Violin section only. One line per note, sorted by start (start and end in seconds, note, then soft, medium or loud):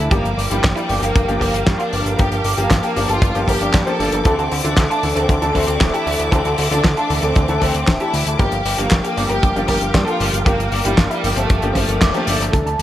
0.12 0.37 A#3 medium
0.12 0.37 G4 loud
0.51 0.67 G3 medium
0.51 0.67 E4 medium
0.77 0.93 G3 medium
0.77 0.93 E4 medium
1.02 1.27 A#3 medium
1.02 1.27 G4 loud
1.41 1.66 A#3 medium
1.41 1.66 G4 loud
1.80 2.05 D4 medium
1.80 2.05 F4 medium
2.19 2.44 G4 medium
2.19 2.44 A#4 loud
2.58 2.74 A#3 medium
2.58 2.74 G4 medium
2.83 3.00 A#3 medium
2.83 3.00 G4 medium
3.09 3.34 F4 medium
3.09 3.34 A4 medium
3.48 3.73 G4 medium
3.48 3.73 A#4 medium
3.87 4.12 A4 medium
3.87 4.12 C5 medium
4.26 4.51 C4 medium
4.26 4.51 A4 loud
4.64 4.81 D4 medium
4.64 4.81 F4 medium
4.90 5.07 D4 medium
4.90 5.07 F4 medium
5.16 5.41 C4 medium
5.16 5.41 A4 loud
5.55 5.80 C4 medium
5.55 5.80 A4 medium
5.94 6.19 E4 medium
5.94 6.19 G4 loud
6.32 6.58 C4 medium
6.32 6.58 A4 loud
6.71 6.88 D4 medium
6.71 6.88 F4 medium
6.97 7.14 D4 medium
6.97 7.14 F4 medium
7.23 7.48 C4 medium
7.23 7.48 A4 loud
7.62 7.87 C4 medium
7.62 7.87 A4 medium
8.01 8.26 E4 medium
8.01 8.26 G4 loud
8.40 8.65 G4 medium
8.40 8.65 A#4 loud
8.78 8.95 A#3 medium
8.78 8.95 G4 medium
9.04 9.21 A#3 medium
9.04 9.21 G4 medium
9.30 9.55 G4 medium
9.30 9.55 A#4 loud
9.69 9.94 G4 medium
9.69 9.94 A#4 loud
10.08 10.33 F4 medium
10.08 10.33 A4 medium
10.46 10.71 A#3 medium
10.46 10.71 G4 loud
10.85 11.02 G3 medium
10.85 11.02 E4 medium
11.11 11.28 G3 medium
11.11 11.28 E4 medium
11.37 11.62 A3 medium
11.37 11.62 C4 loud
11.76 12.01 A3 medium
11.76 12.01 C4 medium
12.14 12.39 A3 medium
12.14 12.39 C4 medium
12.53 12.78 A4 medium